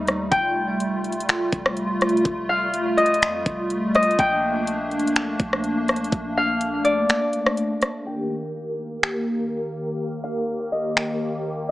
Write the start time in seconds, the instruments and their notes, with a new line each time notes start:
Already playing: 808-style bass D#2, analog synth pad G3 A3 D#4, harp D#5 F5
0.07 cross-stick, closed hi-hat
0.31 808-style bass F1, analog synth pad F4, harp G5, kick, closed hi-hat
0.80 closed hi-hat
1.04 closed hi-hat
1.12 closed hi-hat
1.20 closed hi-hat
1.29 finger snap, closed hi-hat
1.52 808-style bass F1, kick, closed hi-hat
1.66 cross-stick
1.77 closed hi-hat
2.01 cross-stick, closed hi-hat
2.09 closed hi-hat
2.17 closed hi-hat
2.25 808-style bass F1, kick, closed hi-hat
2.49 harp F5
2.74 closed hi-hat
2.97 harp D#5, closed hi-hat
3.06 closed hi-hat
3.14 closed hi-hat
3.22 808-style bass F2, finger snap, closed hi-hat
3.46 808-style bass F1, kick, closed hi-hat
3.70 closed hi-hat
3.95 harp D#5, cross-stick, closed hi-hat
4.03 closed hi-hat
4.11 closed hi-hat
4.19 808-style bass A#1, analog synth pad A#3 D4, harp G5, kick, closed hi-hat
4.67 closed hi-hat
4.91 closed hi-hat
4.99 closed hi-hat
5.07 closed hi-hat
5.16 finger snap, closed hi-hat
5.39 808-style bass A#1, kick, closed hi-hat
5.53 cross-stick
5.64 closed hi-hat
5.88 cross-stick, closed hi-hat
5.96 closed hi-hat
6.04 closed hi-hat
6.12 808-style bass A#1, kick, closed hi-hat
6.37 harp F5
6.61 closed hi-hat
6.84 harp D5, closed hi-hat
7.09 finger snap, closed hi-hat
7.33 closed hi-hat
7.46 cross-stick
7.57 closed hi-hat
7.82 cross-stick, closed hi-hat
8.06 analog synth pad D#2 D#3 A#3 G4 A#4, harp G5
9.03 finger snap
10.24 harp F5
10.72 harp D#5
10.97 finger snap